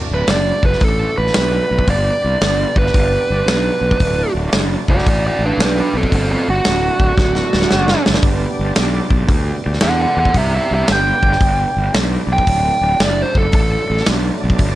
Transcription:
0.00 1.87 A3 medium
0.00 1.86 D4 medium
0.00 1.86 F#4 medium
0.00 1.86 D5 medium
0.11 0.23 D1 medium
0.11 0.30 B4 medium
0.27 0.51 F#1 medium
0.27 0.64 D5 medium
0.27 snare medium
0.27 open hi-hat medium
0.63 0.75 F#1 medium
0.63 0.83 B4 medium
0.63 kick medium
0.73 snare soft
0.80 1.04 A1 medium
0.80 1.17 A4 medium
0.80 kick loud
0.80 open hi-hat soft
1.18 1.29 A1 medium
1.18 1.87 B4 medium
1.27 snare soft
1.34 1.58 B1 medium
1.34 snare loud
1.34 open hi-hat medium
1.71 1.82 B1 medium
1.79 kick medium
1.87 2.09 G1 medium
1.87 3.98 B3 medium
1.87 3.98 D4 medium
1.87 3.98 G4 medium
1.87 3.99 D5 medium
1.87 2.75 D5 medium
1.87 kick loud
1.87 open hi-hat medium
2.24 2.35 C2 medium
2.41 2.63 G1 medium
2.41 snare loud
2.41 open hi-hat medium
2.76 2.88 G1 medium
2.76 4.32 B4 medium
2.76 kick medium
2.86 snare soft
2.94 3.16 G1 medium
2.94 kick loud
2.94 open hi-hat medium
3.30 3.41 G1 medium
3.46 3.69 B1 medium
3.46 snare loud
3.46 open hi-hat medium
3.81 3.93 B1 medium
3.91 kick medium
4.00 4.22 D1 medium
4.00 8.20 A3 medium
4.00 8.21 D4 medium
4.00 8.20 F#4 medium
4.00 8.20 D5 medium
4.00 kick medium
4.00 open hi-hat medium
4.35 4.46 D1 medium
4.52 4.75 F#1 medium
4.52 snare loud
4.52 open hi-hat medium
4.88 5.00 F#1 medium
4.88 5.07 F#4 medium
4.88 5.06 D5 medium
4.88 kick medium
4.98 snare soft
5.06 5.28 A1 medium
5.06 5.24 F#4 medium
5.06 5.25 D5 medium
5.06 kick loud
5.06 open hi-hat soft
5.27 5.42 F#4 medium
5.27 5.46 D5 medium
5.39 5.51 A1 medium
5.44 5.60 D4 medium
5.44 5.61 B4 medium
5.58 5.80 B1 medium
5.58 snare loud
5.58 open hi-hat medium
5.62 5.77 D4 medium
5.62 5.79 B4 medium
5.80 5.95 D4 medium
5.80 5.96 B4 medium
5.94 6.05 B1 medium
5.94 6.12 C4 medium
5.94 6.13 A4 medium
6.03 kick medium
6.12 6.34 G1 medium
6.12 6.30 C4 medium
6.12 6.30 A4 medium
6.12 kick loud
6.12 open hi-hat medium
6.31 6.47 C4 medium
6.31 6.48 A4 medium
6.48 6.59 G1 medium
6.48 8.04 F#4 medium
6.65 6.88 D1 medium
6.65 snare loud
6.65 open hi-hat medium
6.99 7.11 D1 medium
6.99 kick medium
7.17 7.39 D1 medium
7.17 kick loud
7.17 snare medium
7.35 snare medium
7.53 7.65 D1 medium
7.53 snare medium
7.62 snare medium
7.71 7.94 F#1 medium
7.71 snare medium
7.88 snare medium
8.06 8.19 F#1 medium
8.06 snare medium
8.14 snare medium
8.22 8.45 G1 medium
8.22 12.43 B3 medium
8.22 12.43 D4 medium
8.22 12.43 G4 medium
8.22 12.43 D5 medium
8.22 kick loud
8.22 open hi-hat medium
8.59 8.70 G1 medium
8.76 8.99 B1 medium
8.76 snare loud
8.76 open hi-hat medium
9.10 9.23 B1 medium
9.10 kick medium
9.28 9.50 D2 medium
9.28 kick loud
9.28 open hi-hat medium
9.66 9.77 D2 medium
9.73 snare soft
9.80 10.05 E2 medium
9.80 10.00 A4 medium
9.80 10.00 F#5 medium
9.80 snare loud
9.80 open hi-hat medium
10.01 10.17 A4 medium
10.01 10.18 F#5 medium
10.17 10.28 E2 medium
10.17 10.35 A4 medium
10.17 10.36 F#5 medium
10.25 kick medium
10.34 10.57 C2 loud
10.34 10.53 G4 medium
10.34 10.54 E5 loud
10.34 kick loud
10.34 open hi-hat medium
10.56 10.71 G4 medium
10.56 10.72 E5 medium
10.71 10.82 C2 medium
10.71 10.89 G4 medium
10.71 10.92 E5 medium
10.88 11.11 G1 medium
10.88 snare loud
10.88 open hi-hat medium
10.92 11.93 G5 medium
11.23 11.35 G1 medium
11.23 kick medium
11.32 snare soft
11.41 11.63 G1 medium
11.41 kick loud
11.41 open hi-hat medium
11.77 11.88 G1 medium
11.94 12.16 B1 medium
11.94 snare loud
11.94 open hi-hat medium
12.27 12.39 B1 medium
12.33 13.00 G5 loud
12.38 kick medium
12.47 12.69 D1 loud
12.47 14.75 F#3 medium
12.47 14.75 A3 medium
12.47 14.75 D4 medium
12.47 14.75 D5 medium
12.47 kick medium
12.47 open hi-hat medium
12.81 12.93 D1 medium
13.00 13.22 F#1 medium
13.00 snare loud
13.00 open hi-hat medium
13.04 13.22 D5 medium
13.22 13.38 C5 medium
13.35 13.46 F#1 medium
13.35 13.54 A4 loud
13.35 kick medium
13.52 13.75 A1 medium
13.52 14.06 A4 loud
13.52 kick loud
13.52 open hi-hat medium
13.90 14.01 A1 medium
13.97 snare soft
14.06 14.29 B1 medium
14.06 snare loud
14.06 open hi-hat medium
14.44 14.54 B1 medium
14.50 kick medium
14.59 14.75 G1 medium
14.59 kick loud
14.59 open hi-hat medium

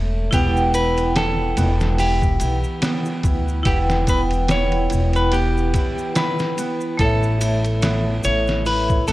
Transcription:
0.00 0.29 E1 medium
0.31 1.54 E1 medium
0.31 9.12 E3 medium
0.31 1.57 B3 loud
0.31 2.36 E4 loud
0.31 9.12 E4 medium
0.31 0.74 G4 medium
0.31 2.37 B4 medium
0.31 kick loud
0.31 ride medium
0.31 maracas soft
0.35 2.38 F#5 medium
0.35 2.39 G5 loud
0.57 maracas soft
0.74 1.15 E4 medium
0.74 1.16 B4 loud
0.74 ride medium
0.74 triangle medium
0.74 maracas loud
0.97 ride soft
0.97 maracas soft
1.15 1.98 E4 medium
1.15 1.99 A4 loud
1.15 snare loud
1.15 ride medium
1.15 maracas soft
1.57 2.38 E1 loud
1.57 2.82 B3 loud
1.57 ride medium
1.57 maracas medium
1.80 snare soft
1.80 maracas soft
1.98 2.40 E4 medium
1.98 2.79 G4 medium
1.98 open hi-hat medium
1.98 maracas medium
2.22 kick medium
2.22 maracas soft
2.40 2.62 B1 medium
2.40 3.23 E4 medium
2.40 ride medium
2.40 triangle medium
2.40 maracas medium
2.64 maracas soft
2.82 4.07 B3 loud
2.82 snare loud
2.82 ride medium
2.82 maracas medium
3.05 maracas soft
3.23 3.62 D2 loud
3.23 3.65 E4 medium
3.23 kick medium
3.23 ride medium
3.23 maracas medium
3.48 maracas soft
3.63 4.87 E1 loud
3.63 5.69 E4 loud
3.63 4.49 E4 medium
3.63 3.78 G4 medium
3.63 5.70 B4 medium
3.63 kick loud
3.63 ride medium
3.63 maracas medium
3.68 5.71 F#5 medium
3.68 5.72 G5 loud
3.90 snare medium
3.90 maracas soft
4.07 5.32 B3 loud
4.07 4.20 B4 loud
4.07 kick medium
4.07 ride medium
4.07 triangle medium
4.07 maracas loud
4.31 ride soft
4.31 maracas soft
4.48 4.90 E4 medium
4.48 5.12 C#5 loud
4.48 snare loud
4.48 ride medium
4.48 maracas medium
4.72 ride soft
4.90 5.71 E1 loud
4.90 5.74 E4 medium
4.90 ride medium
4.90 maracas medium
5.13 5.34 B4 medium
5.13 ride soft
5.13 maracas soft
5.32 6.58 B3 loud
5.32 6.12 G4 medium
5.32 ride medium
5.32 maracas medium
5.57 maracas soft
5.74 6.16 E4 medium
5.74 kick medium
5.74 ride medium
5.74 maracas medium
5.98 maracas soft
6.16 6.99 E4 medium
6.16 7.00 B4 loud
6.16 snare loud
6.16 ride medium
6.16 maracas soft
6.39 snare soft
6.39 maracas soft
6.58 7.82 B3 loud
6.58 ride medium
6.58 maracas medium
6.81 maracas soft
6.97 8.21 A1 loud
6.97 9.02 A3 loud
6.97 7.40 E4 medium
6.97 9.04 A4 medium
6.97 8.24 A4 loud
6.97 kick loud
6.97 ride medium
6.97 maracas soft
7.02 9.05 C#5 medium
7.02 9.06 E5 loud
7.23 maracas soft
7.41 8.24 E4 medium
7.41 ride medium
7.41 triangle medium
7.41 maracas medium
7.64 ride soft
7.64 maracas soft
7.82 9.07 B3 medium
7.82 snare loud
7.82 ride medium
7.82 maracas soft
8.24 9.05 A1 loud
8.24 8.65 E4 medium
8.24 8.63 C#5 loud
8.24 ride medium
8.24 maracas medium
8.47 snare soft
8.47 maracas soft
8.66 9.12 E4 medium
8.66 9.07 B4 medium
8.66 open hi-hat medium
8.66 maracas soft
8.89 kick loud
8.89 maracas soft
9.08 9.12 E1 loud
9.08 9.12 B3 loud
9.08 9.12 A4 medium
9.08 ride medium
9.08 triangle medium
9.08 maracas medium

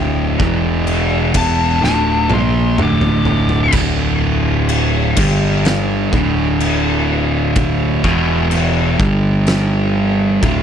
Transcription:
0.00 0.36 D1 medium
0.00 0.39 D2 medium
0.00 0.39 A2 medium
0.00 0.39 D3 loud
0.39 1.31 E1 loud
0.39 1.33 E2 loud
0.39 1.34 B2 loud
0.39 1.35 E3 loud
0.39 kick loud
0.87 crash medium
1.34 1.80 E1 medium
1.34 1.81 E2 medium
1.34 1.82 B2 medium
1.34 1.82 E3 medium
1.34 1.83 A5 loud
1.34 kick loud
1.34 crash loud
1.81 2.28 D1 loud
1.81 2.29 D2 medium
1.81 2.29 A2 loud
1.81 2.29 D3 loud
1.81 2.30 A5 loud
1.81 snare medium
2.29 2.75 A#1 loud
2.29 2.76 A#2 loud
2.29 2.77 F3 loud
2.29 2.77 A#3 loud
2.29 high tom medium
2.33 2.79 C6 medium
2.78 3.70 D1 loud
2.78 3.73 D2 loud
2.78 3.73 A2 loud
2.78 3.73 D3 loud
2.78 mid tom medium
2.82 3.73 D6 loud
3.01 mid tom medium
3.25 floor tom medium
3.49 floor tom medium
3.72 5.13 D1 loud
3.72 5.16 D2 loud
3.72 5.16 A2 loud
3.72 5.16 D3 loud
3.72 kick loud
3.72 crash loud
3.72 crash medium
4.69 crash medium
5.17 6.09 G1 loud
5.17 6.11 G2 medium
5.17 6.12 D3 medium
5.17 6.12 G3 loud
5.17 kick loud
5.17 crash loud
5.65 snare loud
5.65 crash medium
6.13 8.00 D1 medium
6.13 8.04 D2 medium
6.13 8.04 A2 loud
6.13 8.04 D3 loud
6.13 kick loud
6.60 crash medium
7.56 kick loud
7.56 crash medium
8.04 8.95 E1 loud
8.04 8.98 E2 medium
8.04 8.98 B2 loud
8.04 8.98 E3 loud
8.04 kick loud
8.51 crash medium
8.99 10.38 G1 loud
8.99 10.41 G2 medium
8.99 10.41 D3 loud
8.99 10.42 G3 loud
8.99 kick loud
9.47 snare loud
9.47 crash medium
10.42 10.63 D1 loud
10.42 10.63 D2 medium
10.42 10.63 A2 loud
10.42 10.63 D3 loud
10.42 kick loud
10.42 crash medium

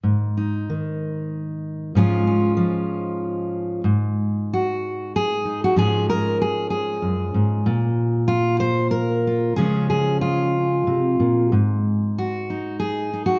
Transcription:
0.03 1.95 G#2 soft
0.37 1.92 D#4 soft
0.70 1.96 D#3 soft
1.95 3.81 G#2 medium
1.95 2.56 F3 soft
1.95 5.76 G#3 soft
1.95 2.26 C#4 soft
1.95 3.87 F4 medium
2.27 3.81 C#4 soft
2.57 3.81 F3 soft
3.84 5.72 G#2 soft
4.53 5.15 F#4 medium
5.16 5.62 G#4 medium
5.45 5.73 D#4 soft
5.64 5.78 F#4 medium
5.76 7.02 G#2 medium
5.76 9.26 F3 soft
5.76 7.66 G#3 soft
5.76 8.63 C#4 soft
5.76 6.09 G#4 medium
6.10 6.40 A#4 medium
6.42 6.69 G#4 medium
6.70 7.65 G#4 medium
7.02 7.34 F#2 soft
7.34 7.66 G#2 soft
7.66 9.57 A#2 medium
8.28 8.60 F4 medium
8.60 8.90 C5 medium
8.91 9.56 A#4 medium
9.27 9.55 F4 soft
9.56 10.87 C#3 medium
9.56 11.49 F3 soft
9.56 13.39 G#3 soft
9.56 10.55 C#4 soft
9.56 9.89 G#4 medium
9.90 10.21 G#4 medium
10.21 11.52 F4 medium
10.87 11.19 C3 soft
11.20 11.53 A#2 soft
11.52 13.39 G#2 medium
12.18 12.79 F#4 medium
12.50 13.12 D#4 soft
12.80 13.25 G#4 medium
13.13 13.39 D#4 soft
13.26 13.39 F#4 medium

